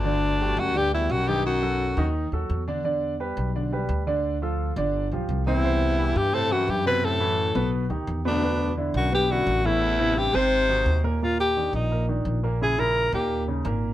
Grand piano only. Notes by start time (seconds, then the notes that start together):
0.05 D3 D4 D5
0.40 G3 F#4 G4
0.75 D3 D4 D5
0.93 G3 F#4 G4
1.28 D#3 D#4 D#5
1.62 F#3 F#4 A4
1.98 D#3 D#4 D#5
2.33 F#3 F#4 A4
2.68 D3 D4 D5
2.84 D3 D4 D5
3.20 G3 G4 B4
3.56 D3 D4 D5
3.72 G3 G4 B4
4.07 D3 D4 D5
4.42 F3 F4 A4
4.77 D3 D4 D5
5.12 F3 F4 G4
5.47 C3 C4 C5
5.64 C3 C4 C5
5.99 E3 E4 G4
6.33 C3 C4 C5
6.50 E3 E4 G4
6.85 C3 C4 C5
7.20 E3 E4 F#4
7.55 B2 B3 B4
7.90 D#3 D#4 G4
8.25 B2 B3 B4
8.43 B2 B3 B4
8.77 D3 D4 E4
9.12 B2 B3 B4
9.30 D3 D4 E4
9.65 A2 A3 A4
9.99 C3 C4 E4
10.34 C3 C4 C5
10.69 D#3 D#4 F#4
11.04 A#2 A#3 A#4
11.22 A#2 A#3 A#4
11.57 D#3 D4 D#4
11.91 A#2 A#3 A#4
12.09 D#3 D4 D#4
12.43 A#2 A#3 A#4
12.61 C#3 C#4 E4
12.78 C#3 C#4 E4
13.13 A#2 A#3 A#4
13.48 C#3 C#4 D#4
13.65 A#2 A#3 A#4